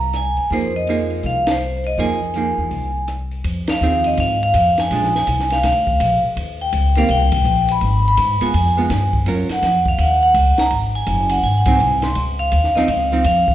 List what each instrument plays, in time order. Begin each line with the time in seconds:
Already playing: upright bass C2, vibraphone A#5
0.13 vibraphone G#5, cross-stick, closed hi-hat
0.37 muted upright bass stroke, open hi-hat
0.50 upright bass F2, hollow-body jazz guitar F3 A#3 D#4 G#4, vibraphone C5, kick, open hi-hat
0.76 vibraphone D#5
0.87 hollow-body jazz guitar F3 A#3 D#4 G#4, closed hi-hat
1.10 open hi-hat
1.23 upright bass C2, vibraphone F5, kick, open hi-hat
1.47 snare, ride
1.51 vibraphone C5
1.84 vibraphone D#5, open hi-hat
1.97 upright bass F2, hollow-body jazz guitar F3 A#3 D#4 G#4, vibraphone G#5, kick, open hi-hat
2.34 hollow-body jazz guitar F3 A#3 D#4 G#4, closed hi-hat
2.58 upright bass E2
2.71 upright bass C2, kick, open hi-hat
3.08 cross-stick, closed hi-hat
3.31 open hi-hat
3.44 upright bass F2, kick, ride
3.67 vibraphone F5, snare, ride
3.80 upright bass D#2, hollow-body jazz guitar F3 C4 D#4 G#4, hi-hat pedal
4.04 vibraphone D#5, ride
4.17 upright bass G#2, vibraphone F5, kick, ride
4.43 vibraphone F5
4.54 upright bass F2, kick, hi-hat pedal, ride
4.78 vibraphone G#5, snare, ride
4.90 upright bass A#1, hollow-body jazz guitar F3 G#3 D4, kick, ride
5.03 snare
5.15 vibraphone G#5, snare
5.27 upright bass C2, kick, hi-hat pedal, ride
5.40 snare
5.50 vibraphone F5, snare, ride
5.63 upright bass D2, vibraphone F5, kick, snare, ride
5.87 kick
6.00 upright bass A#1, kick, hi-hat pedal, ride
6.23 muted upright bass stroke
6.37 upright bass D#2, kick, ride
6.61 vibraphone G5
6.73 upright bass C#2, kick, hi-hat pedal, ride
6.95 hollow-body jazz guitar D#3 A#3 C4 G4, vibraphone F5, ride
7.09 upright bass C2, vibraphone G5, kick, ride
7.32 vibraphone G5, kick, ride
7.45 upright bass A#1, hi-hat pedal
7.68 vibraphone B5, ride
7.81 upright bass G#1, kick, ride
8.08 vibraphone B5
8.17 upright bass G#2, kick, hi-hat pedal, ride
8.41 hollow-body jazz guitar G#3 B3 F4, vibraphone G#5, muted upright bass stroke, ride
8.54 upright bass F2, vibraphone G#5, kick, ride
8.77 hollow-body jazz guitar G#3 B3 F4
8.90 upright bass G2, kick, snare, hi-hat pedal, ride
9.13 kick
9.26 upright bass F#2, hollow-body jazz guitar F#3 C#4 F4 A#4, kick, ride
9.49 vibraphone F#5, muted upright bass stroke, snare, ride
9.62 upright bass F2, kick, snare, hi-hat pedal, ride
9.86 vibraphone F5, kick
9.98 upright bass D#2, vibraphone F#5, kick, ride
10.23 vibraphone F#5
10.34 upright bass C#2, kick, hi-hat pedal, ride
10.58 vibraphone A#5, muted upright bass stroke, snare, ride
10.71 upright bass G#1, kick, ride
10.95 vibraphone G#5
11.07 upright bass F#1, kick, hi-hat pedal, ride
11.29 vibraphone F#5, ride
11.43 upright bass G#1, vibraphone G#5, kick
11.58 vibraphone F#5
11.66 hollow-body jazz guitar F#3 C4 D#4, vibraphone G#5, kick, ride
11.79 upright bass C2, hi-hat pedal
12.02 vibraphone C6, snare, ride
12.15 upright bass C#2, kick, ride
12.39 vibraphone F5
12.52 upright bass D#2, kick, hi-hat pedal, ride
12.64 snare
12.75 hollow-body jazz guitar F3 C4 D#4, vibraphone D#5, muted upright bass stroke, snare
12.88 upright bass C#2, vibraphone F5, kick, ride
13.12 hollow-body jazz guitar F3 C4 D#4
13.24 upright bass F2, vibraphone F5, kick, hi-hat pedal, ride
13.48 kick